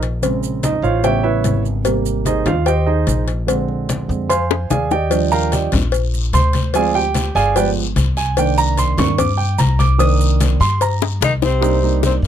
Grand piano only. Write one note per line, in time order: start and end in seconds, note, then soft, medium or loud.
0.22 0.81 C#3 medium
0.22 0.81 G#3 medium
0.22 0.81 C4 medium
0.64 0.84 D#4 medium
0.64 0.83 D#5 medium
0.83 1.04 F4 medium
0.83 1.04 C5 medium
0.83 1.03 C#5 medium
0.83 1.03 F5 loud
1.03 1.81 C#3 medium
1.03 1.82 G3 medium
1.03 1.82 B3 medium
1.03 1.24 G4 medium
1.03 1.22 C#5 medium
1.03 1.22 E5 medium
1.03 1.24 G5 loud
1.23 1.62 E4 medium
1.23 1.62 B4 medium
1.23 1.62 C#5 medium
1.23 1.62 E5 medium
1.84 2.43 C3 medium
1.84 2.43 G3 medium
1.84 2.44 A#3 medium
2.26 2.46 D#4 medium
2.26 2.46 G#4 medium
2.26 2.46 C5 medium
2.26 2.46 D#5 medium
2.46 2.67 F4 medium
2.46 2.66 F5 loud
2.66 2.87 G4 medium
2.66 2.85 C5 medium
2.66 2.85 D#5 medium
2.66 2.87 G5 loud
2.86 3.25 D#4 medium
2.86 3.25 G#4 medium
2.86 3.25 C5 medium
2.86 3.25 D#5 medium
3.47 4.07 D3 medium
3.47 4.07 G#3 medium
3.47 4.08 C4 medium
4.08 4.27 D3 soft
4.08 4.28 G#3 soft
4.08 4.28 C4 medium
4.29 4.68 C5 medium
4.29 4.68 F5 medium
4.29 4.68 G#5 medium
4.29 4.68 C6 loud
4.70 4.91 G#4 medium
4.70 4.90 D5 medium
4.70 4.91 F5 medium
4.70 4.90 G#5 medium
4.92 5.30 G4 medium
4.92 5.29 D5 medium
4.92 5.29 D#5 medium
4.92 5.29 G5 medium
5.10 5.69 F3 medium
5.10 5.69 G3 medium
5.10 5.70 D4 medium
5.32 5.52 A#4 medium
5.32 5.52 F5 medium
5.32 5.51 G5 medium
5.32 5.52 A#5 loud
5.52 5.72 G4 medium
5.52 5.72 D5 medium
5.52 5.72 D#5 medium
5.52 5.72 G5 medium
6.34 6.72 C5 medium
6.34 6.72 C6 loud
6.74 7.01 F3 medium
6.74 7.02 G#3 medium
6.74 7.02 C4 medium
6.74 6.95 G#4 medium
6.74 6.95 D5 medium
6.74 6.95 F5 medium
6.74 6.95 G#5 loud
6.95 7.33 G4 medium
6.95 7.33 G5 loud
7.35 7.55 G#4 medium
7.35 7.55 D5 medium
7.35 7.55 F5 medium
7.35 7.55 G#5 loud
7.55 7.83 F3 medium
7.55 7.83 G#3 medium
7.55 7.83 B3 medium
7.55 7.68 G4 medium
7.55 7.68 B4 medium
7.55 7.69 D5 medium
7.55 7.68 G5 medium
8.17 8.37 G#5 loud
8.37 8.95 D#3 medium
8.37 8.96 A#3 medium
8.37 8.96 D4 medium
8.37 8.58 G5 loud
8.58 8.77 A#5 loud
8.79 8.98 C6 loud
8.98 9.16 D#3 medium
8.98 9.17 A#3 soft
8.98 9.17 D4 medium
8.98 9.18 C#6 loud
9.19 9.38 D6 loud
9.38 9.58 G5 medium
9.58 9.78 A#5 medium
9.79 9.99 D6 loud
9.98 10.57 D#3 medium
9.98 10.57 A#3 medium
9.98 10.57 D4 medium
9.98 10.56 D#6 loud
10.61 10.80 C6 loud
10.82 11.19 A#5 medium
11.61 11.76 G3 medium
11.61 11.76 A#3 medium
11.61 11.76 D4 medium
11.61 11.76 D#4 medium
11.82 12.18 G3 medium
11.82 12.18 A#3 medium
11.82 12.18 D4 medium
11.82 12.18 D#4 medium